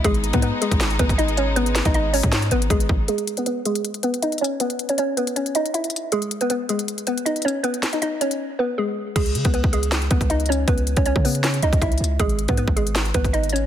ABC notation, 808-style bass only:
X:1
M:4/4
L:1/16
Q:1/4=158
K:G#phr
V:1 name="808-style bass" clef=bass
G,,,3 G,,2 z2 G,,,3 G,,,6- | G,,,3 G,,,4 G,,3 G,,,2 G,,,2 G,,,2 | z16 | z16 |
z16 | z16 | C,,2 C, C,,2 C,,4- C,, C,,6 | C,,3 C,,2 C,4- C, C,, C,,3 C,,2 |
G,,,3 G,,2 G,,,4- G,,, G,,,6 |]